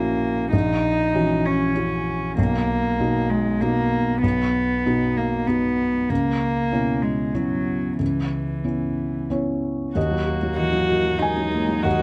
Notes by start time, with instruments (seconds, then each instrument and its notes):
Already playing: felt piano A#1 C#4 E4 F#4, cello A#3
0.51 felt piano A#1, cello D#4
1.14 felt piano E3 C#4 F#4
1.45 cello C#4
1.75 felt piano C#4 E4 F#4
2.38 felt piano B1, cello A#3
3.00 felt piano B2 D#4 F#4
3.29 cello G#3
3.61 felt piano B2 D#4 F#4, cello A#3
4.22 felt piano B1, cello B3
4.86 felt piano B2 D#4 F#4
5.17 cello A#3
5.47 cello B3, felt piano B3 D#4 F#4
6.10 felt piano C#2, cello A#3
6.72 felt piano B2 C#4 E4
7.02 cello G#3
7.34 cello F#3, felt piano B3 C#4 E4
7.99 felt piano C#2, cello E3
8.64 felt piano B3 C#4 E4
9.30 felt piano B3 C#4 E4 C#5
9.93 felt piano D#2 D#5, ambient pad F#3 A#4 D#5, cello A#3, viola F#4
10.11 felt piano F#3
10.27 felt piano F#4
10.43 felt piano F#3
10.57 felt piano E3, viola D#4, violin F#4
10.73 felt piano F#3
10.89 felt piano F#4
11.05 felt piano F#3
11.19 cello G#3, violin D#4, viola D#4, felt piano D#4 G#5
11.37 felt piano F#3
11.54 felt piano A#3
11.69 felt piano F#3
11.83 felt piano D#2 F#5, violin F#4